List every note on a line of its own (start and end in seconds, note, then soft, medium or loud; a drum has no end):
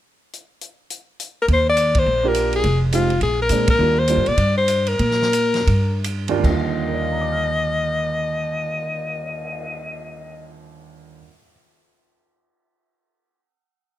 0.33 closed hi-hat soft
0.61 closed hi-hat soft
0.90 closed hi-hat medium
1.20 closed hi-hat medium
1.42 1.46 A#4 medium
1.48 2.03 D#2 medium
1.48 kick soft
1.48 ride soft
1.53 1.67 C5 medium
1.70 2.00 D5 medium
1.77 hi-hat pedal soft
1.77 ride medium
1.95 2.29 C5 loud
1.95 kick medium
1.95 ride medium
2.06 2.61 A#1 medium
2.23 2.61 A#3 medium
2.23 2.62 D4 medium
2.23 2.62 F4 medium
2.23 2.62 G4 medium
2.28 2.55 A#4 medium
2.35 hi-hat pedal soft
2.35 ride medium
2.53 2.81 G#4 medium
2.53 ride soft
2.64 3.19 F1 medium
2.64 kick soft
2.64 ride soft
2.92 3.09 G#3 medium
2.92 3.09 C4 medium
2.92 3.09 D#4 soft
2.92 3.21 F4 medium
2.92 3.09 G4 medium
2.92 hi-hat pedal medium
2.92 ride medium
3.10 ride soft
3.21 3.48 A#1 medium
3.21 3.39 G#4 medium
3.21 kick soft
3.21 ride medium
3.42 3.68 A#4 medium
3.49 3.77 A#2 medium
3.49 3.67 G#3 medium
3.49 3.67 C4 medium
3.49 3.67 D4 medium
3.49 3.68 G#4 medium
3.49 hi-hat pedal medium
3.49 ride medium
3.68 4.00 A#4 medium
3.68 kick medium
3.68 ride medium
3.79 4.15 D#2 medium
3.79 3.96 G3 medium
3.79 3.96 A#3 medium
3.79 3.96 D4 medium
3.79 3.96 F4 medium
3.99 4.29 C5 medium
4.08 4.25 G3 medium
4.08 4.25 A#3 medium
4.08 4.26 D4 soft
4.08 4.26 F4 medium
4.08 hi-hat pedal medium
4.08 ride medium
4.17 4.27 G2 medium
4.26 4.37 A#2 medium
4.26 4.57 D5 medium
4.26 ride soft
4.37 4.97 G2 medium
4.37 kick soft
4.37 ride medium
4.57 4.90 C5 medium
4.68 hi-hat pedal medium
4.68 ride medium
4.87 6.05 A#4 medium
4.87 ride soft
4.99 5.64 A#2 medium
4.99 kick soft
4.99 ride medium
5.11 snare soft
5.22 snare soft
5.33 hi-hat pedal medium
5.33 ride medium
5.54 snare soft
5.54 ride soft
5.67 6.40 G2 medium
5.67 kick soft
5.67 ride medium
6.04 hi-hat pedal soft
6.04 ride medium
6.28 6.38 D#2 medium
6.28 6.43 G3 medium
6.28 6.43 A#3 medium
6.28 6.44 D4 medium
6.28 6.44 F4 medium
6.28 ride soft
6.39 11.19 D#2 medium
6.39 11.22 D#3 medium
6.44 11.19 D#2 medium
6.44 11.25 G3 medium
6.44 10.51 D#5 medium
6.44 kick soft
6.44 crash medium
6.49 11.27 D3 medium
6.49 11.28 F4 medium
6.70 cymbal swell soft
6.87 11.21 A#4 soft
6.94 11.25 D5 soft
7.02 11.29 F5 soft
7.12 11.34 A#5 soft
7.21 11.39 D6 soft
7.32 11.44 F6 soft
7.44 11.50 A#6 soft